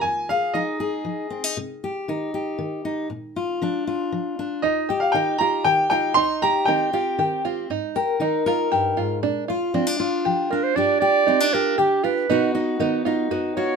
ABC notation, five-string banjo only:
X:1
M:3/4
L:1/8
Q:1/4=118
K:Cm
V:1 name="Five-string banjo"
z6 | z6 | z6 | E G E F G F |
E G E F G F | E G E F G F | D F D F G F | D G E F G F |
^D ^F D =F ^F =F |]